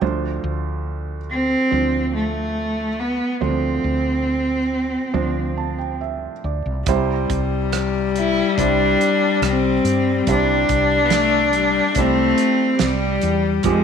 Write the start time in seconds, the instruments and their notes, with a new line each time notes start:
0.01 fretless electric bass D2, felt piano D2 D3 F3 D4 C5
0.44 fretless electric bass D2
1.31 cello C4
1.71 fretless electric bass D2, felt piano F3 D4 C5
2.15 cello A3
2.99 cello B3
3.41 felt piano D2 D3 F3 D4 C5, fretless electric bass D2, cello C4
3.84 fretless electric bass D2
5.14 fretless electric bass D2, felt piano F3 D4 C5
5.58 felt piano A5
5.78 felt piano G5
6.01 felt piano E5
6.44 fretless electric bass D2, felt piano D5
6.66 fretless electric bass C2
6.86 fretless electric bass C2, felt piano C2 C3 G3 E4 C5, viola G3, kick, closed hi-hat
7.30 fretless electric bass C2, kick, closed hi-hat
7.72 cross-stick, closed hi-hat
8.16 cello E4, closed hi-hat
8.58 fretless electric bass C2, felt piano G3 E4 C5, cello D4, kick, closed hi-hat
9.01 closed hi-hat
9.42 fretless electric bass C2, cross-stick, closed hi-hat
9.47 cello C4
9.84 fretless electric bass G2, closed hi-hat
10.27 fretless electric bass C2, felt piano C2 C3 G3 E4 C5, cello D4, kick, closed hi-hat
10.69 fretless electric bass C2, kick, closed hi-hat
11.04 viola B3
11.10 viola A3, snare, closed hi-hat
11.53 viola G3, closed hi-hat
11.95 fretless electric bass C2, felt piano G3 E4 C5, viola A3, kick, closed hi-hat
12.00 cello C4
12.38 closed hi-hat
12.79 fretless electric bass C2, viola G3, snare, closed hi-hat
12.84 cello G3
13.21 fretless electric bass E2, closed hi-hat
13.63 felt piano F1 F2 F3 G#3 G4, fretless electric bass F2, viola F3, kick, closed hi-hat
13.69 cello G#3